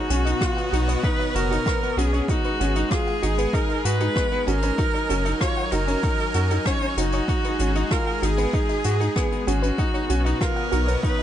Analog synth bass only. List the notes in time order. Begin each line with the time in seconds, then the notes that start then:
0.10 B1
0.73 B1
1.35 F#1
1.97 B1
2.60 G#1
3.23 G#1
3.85 G#2
4.47 G#1
5.10 F#1
5.72 F#1
6.34 F#2
6.97 F#1
7.60 G#1
8.22 G#1
8.85 G#2
9.47 G#1
10.10 B1
10.73 B1